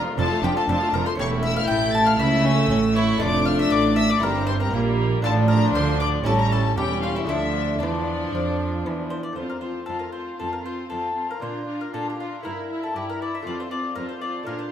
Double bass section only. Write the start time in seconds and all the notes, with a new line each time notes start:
0.17 F1
0.43 F1
0.68 F1
0.93 F1
1.19 E1
1.69 A1
2.20 C#2
2.70 A1
3.20 F1
3.72 A1
4.22 G1
4.72 A#1
5.23 A1
5.74 D2
6.24 A1
6.76 E1
7.28 D2
7.81 E2
8.33 F2
8.85 E2